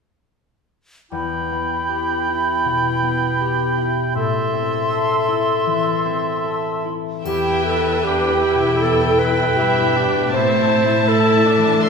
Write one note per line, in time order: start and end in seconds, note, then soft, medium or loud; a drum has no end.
1.12 4.18 E2 soft
1.12 4.12 E4 soft
1.12 4.12 G5 soft
1.12 4.16 B5 soft
1.51 3.01 B3 soft
1.89 3.39 G4 soft
2.27 3.76 E4 soft
2.65 4.19 B2 soft
3.02 4.18 B3 soft
3.41 4.19 G4 soft
3.78 5.27 E4 soft
4.15 7.28 A2 soft
4.15 6.89 A4 soft
4.15 6.89 E5 soft
4.15 6.92 C6 soft
4.53 6.04 C4 soft
4.91 6.43 A4 soft
5.28 6.84 E4 soft
5.66 7.29 E3 soft
6.05 7.29 C4 soft
6.44 7.28 A4 soft
6.85 7.76 E4 soft
7.25 10.35 E2 soft
7.25 9.53 E2 soft
7.25 7.99 E4 soft
7.25 7.62 G4 soft
7.25 8.76 B4 soft
7.25 7.99 E5 soft
7.25 8.01 G5 soft
7.25 triangle soft
7.51 8.28 B3 soft
7.65 8.06 A4 soft
7.77 9.30 E4 soft
8.02 8.41 D4 soft
8.02 9.55 G4 soft
8.02 8.83 G4 soft
8.02 10.32 G5 soft
8.29 8.79 B3 soft
8.41 9.54 E4 soft
8.55 9.05 B2 soft
8.79 9.80 B3 soft
8.79 9.56 A4 soft
8.79 9.21 A4 soft
9.06 10.06 B2 soft
9.19 10.33 B4 soft
9.31 10.82 E4 soft
9.56 10.31 G2 soft
9.56 9.94 E4 soft
9.56 10.32 G4 soft
9.56 10.35 G4 soft
9.56 10.33 E5 soft
9.81 10.35 B3 soft
9.95 10.33 D4 soft
10.08 10.36 B2 soft
10.32 11.89 A2 soft
10.32 11.07 C4 soft
10.32 11.06 E4 soft
10.32 11.10 C5 soft
10.32 11.81 E5 soft
10.32 11.80 A5 soft
10.58 11.32 A3 soft
10.84 11.89 E4 soft
11.08 11.44 E4 soft
11.08 11.89 A4 soft
11.08 11.82 A4 medium
11.33 11.82 A3 soft
11.46 11.89 D4 soft
11.58 11.89 E3 soft
11.83 11.89 A3 soft
11.83 11.89 A4 medium
11.83 11.89 E5 soft
11.83 11.89 C6 soft